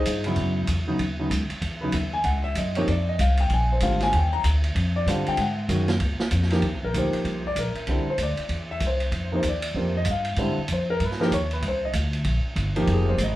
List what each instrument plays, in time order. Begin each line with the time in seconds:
Already playing: grand piano D#4 G#4 C5 D#5
0.05 upright bass G2, kick, hi-hat pedal, ride
0.24 grand piano C#3 F#3 B3 E4, ride
0.36 upright bass F#2, kick, ride
0.67 upright bass E2, kick, hi-hat pedal, ride
0.87 grand piano C#3 F#3 B3 D#4
0.99 upright bass D#2, kick, ride
1.19 grand piano C#3 F#3 B3 D#4
1.30 upright bass C#2, kick, hi-hat pedal, ride
1.50 muted upright bass stroke, ride
1.61 upright bass E2, kick, ride
1.81 grand piano C#3 F#3 B3 D#4 B4
1.92 upright bass D#2, grand piano E5, kick, hi-hat pedal, ride
2.14 grand piano G#5
2.24 upright bass C#2, grand piano F#5, kick, ride
2.44 grand piano E5
2.55 upright bass F#2, grand piano D#5, kick, hi-hat pedal, ride
2.75 grand piano C3 F3 A#3 D#4 C#5, ride
2.87 upright bass F2, grand piano D5, kick, ride
3.09 grand piano D#5
3.19 upright bass C2, grand piano F5, kick, hi-hat pedal, ride
3.37 grand piano G5, ride
3.50 upright bass A#1, grand piano G#5, kick, ride
3.72 grand piano C5
3.80 upright bass G#1, grand piano D3 G3 C4 F4 F5, kick, hi-hat pedal, ride
4.00 grand piano G#5, snare, ride
4.13 upright bass D#2, kick, ride
4.17 grand piano G5
4.33 grand piano A#5
4.44 upright bass D2, kick, hi-hat pedal, ride
4.64 ride
4.75 upright bass F2, kick, ride
4.96 grand piano D5
5.06 upright bass G2, grand piano D3 G3 C4 F4 F5, kick, hi-hat pedal, ride
5.26 grand piano G5, muted upright bass stroke, ride
5.37 upright bass G#2, grand piano F#5, kick, ride
5.69 upright bass F#2, grand piano D#3 G#3 C#4 F#4, kick, hi-hat pedal, ride
5.88 snare, ride
6.00 upright bass C#2, kick, ride
6.19 muted upright bass stroke, snare
6.31 upright bass F2, kick, hi-hat pedal, ride
6.42 snare
6.50 grand piano F3 A#3 D#4 G4, snare, ride
6.62 upright bass D#2, kick, ride
6.73 upright bass C2
6.83 upright bass A#1, grand piano A#4
6.94 upright bass D2, grand piano F3 A#3 D#4 G4, kick, hi-hat pedal, ride
6.98 grand piano C5
7.13 muted upright bass stroke, ride
7.25 upright bass C2, kick, ride
7.47 grand piano D5
7.55 upright bass A#1, grand piano A#4, kick, hi-hat pedal, ride
7.75 muted upright bass stroke, ride
7.87 upright bass C2, grand piano D3 G3 C4 E4, kick, ride
8.05 muted upright bass stroke
8.10 grand piano C5
8.18 upright bass D2, kick, hi-hat pedal, ride
8.22 grand piano D5
8.37 muted upright bass stroke, ride
8.49 upright bass E2, kick, ride
8.71 grand piano E5
8.80 upright bass C2, kick, hi-hat pedal, ride
8.87 grand piano C5
9.00 ride
9.12 upright bass F2, kick, ride
9.32 grand piano C3 F3 A#3 D#4 C5
9.43 upright bass D#2, kick, hi-hat pedal, ride
9.48 grand piano D5
9.62 ride
9.74 upright bass F2, grand piano C3 F3 A#3 C4, kick
9.97 grand piano D#5
10.05 upright bass G2, kick, hi-hat pedal, ride
10.11 grand piano F5
10.25 ride
10.36 upright bass G#2, grand piano D3 G3 C4 E4, kick, ride
10.58 muted upright bass stroke
10.68 upright bass F2, kick, hi-hat pedal, ride
10.73 grand piano C5
10.90 grand piano A#4
11.00 upright bass G2, kick, ride
11.05 grand piano B4
11.11 snare
11.20 grand piano F3 A#3 D#4 G4 A#4, snare
11.31 upright bass D#2, grand piano C#5, kick, hi-hat pedal, ride
11.51 grand piano B4, ride
11.62 upright bass C2, kick, ride
11.68 grand piano C5
11.85 grand piano D#5
11.93 upright bass D2, kick, hi-hat pedal, ride
12.13 ride
12.24 upright bass A#1, kick, ride
12.44 muted upright bass stroke
12.56 upright bass G1, kick, hi-hat pedal, ride
12.76 grand piano F3 A#3 D#4 G4, ride
12.87 upright bass F1, kick, ride
12.93 grand piano G#4
13.09 grand piano C5
13.18 upright bass G#1, kick, hi-hat pedal, ride
13.23 grand piano D#5